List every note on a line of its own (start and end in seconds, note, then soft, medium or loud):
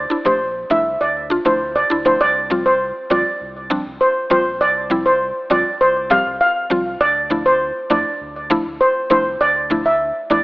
0.10 0.16 D4 medium
0.10 0.17 E4 medium
0.25 0.64 A#1 medium
0.25 0.37 F3 medium
0.25 0.37 A3 medium
0.25 0.38 D4 medium
0.25 0.38 G4 medium
0.25 0.37 C5 medium
0.70 0.96 C2 loud
0.70 0.82 F3 medium
0.70 0.83 A3 medium
0.70 0.83 D4 medium
0.70 0.83 E4 medium
0.70 0.82 E5 medium
1.01 1.39 D2 medium
1.01 1.12 D5 medium
1.30 1.36 D4 medium
1.30 1.37 F4 medium
1.45 1.84 D2 medium
1.45 1.57 F3 medium
1.45 1.58 A3 medium
1.45 1.58 D4 medium
1.45 1.58 E4 medium
1.45 1.56 C5 medium
1.76 1.86 D5 medium
1.90 2.16 D2 medium
1.90 1.96 D4 medium
1.90 1.97 E4 medium
2.05 2.17 F3 medium
2.05 2.18 A3 medium
2.05 2.18 D4 medium
2.05 2.18 E4 medium
2.05 2.16 C5 medium
2.21 2.92 C2 loud
2.21 2.31 D5 loud
2.50 2.62 F3 medium
2.50 2.63 G3 medium
2.50 2.63 C4 medium
2.50 2.63 F4 medium
2.66 2.77 C5 medium
3.10 3.23 D2 loud
3.10 3.22 F3 medium
3.10 3.23 G3 medium
3.10 3.23 C4 medium
3.10 3.23 F4 medium
3.10 3.22 D5 medium
3.41 3.79 C2 loud
3.70 3.82 F3 medium
3.70 3.83 G3 medium
3.70 3.83 C4 medium
3.70 3.83 D4 loud
3.86 3.99 C2 medium
4.01 4.12 C5 medium
4.30 4.62 A#1 medium
4.30 4.42 F3 medium
4.30 4.43 G3 medium
4.30 4.43 C4 medium
4.30 4.43 F4 medium
4.30 4.42 C5 medium
4.61 5.32 C2 loud
4.61 4.72 D5 loud
4.90 5.02 F3 medium
4.90 5.03 G3 medium
4.90 5.03 C4 medium
4.90 5.03 E4 medium
5.06 5.17 C5 medium
5.50 5.64 D2 loud
5.50 5.62 F3 medium
5.50 5.62 G3 medium
5.50 5.63 C4 medium
5.50 5.63 F4 medium
5.50 5.62 D5 medium
5.81 6.19 C2 loud
5.81 5.92 C5 medium
6.10 6.22 F3 medium
6.10 6.23 G3 medium
6.10 6.23 C4 medium
6.10 6.23 G4 medium
6.10 6.22 F5 medium
6.26 6.38 C2 medium
6.41 6.83 F5 medium
6.70 6.96 C2 medium
6.70 6.82 F3 medium
6.70 6.83 G3 medium
6.70 6.83 C4 medium
6.70 6.83 F4 medium
7.01 7.72 D2 loud
7.01 7.11 D5 loud
7.30 7.42 F3 medium
7.30 7.43 A3 medium
7.30 7.43 D4 medium
7.30 7.43 E4 medium
7.46 7.57 C5 medium
7.90 8.04 E2 loud
7.90 8.02 F3 medium
7.90 8.02 A3 medium
7.90 8.03 D4 medium
7.90 8.03 E4 medium
7.90 8.01 D5 medium
8.21 8.59 D2 medium
8.50 8.62 F3 medium
8.50 8.63 A3 medium
8.50 8.63 D4 medium
8.50 8.63 E4 loud
8.66 8.79 D2 medium
8.81 8.91 C5 medium
9.10 9.36 C2 medium
9.10 9.22 F3 medium
9.10 9.23 A3 medium
9.10 9.23 D4 medium
9.10 9.23 E4 medium
9.10 9.21 C5 medium
9.41 10.12 D2 loud
9.41 9.52 D5 loud
9.70 9.82 F3 medium
9.70 9.83 A3 medium
9.70 9.83 D4 medium
9.70 9.83 E4 medium
9.86 9.96 E5 medium
10.30 10.44 E2 loud
10.30 10.42 F3 medium
10.30 10.43 A3 medium
10.30 10.43 D4 medium
10.30 10.43 E4 medium
10.30 10.41 D5 medium